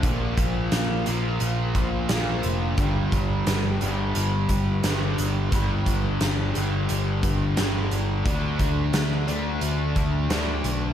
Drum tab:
HH |xxxxxxxx|xxxxxxxx|xxxxxxxx|xxxxxxxx|
SD |--o---o-|--o---o-|--o---o-|--o---o-|
BD |oo---o--|oo---o--|oo---o--|oo---o--|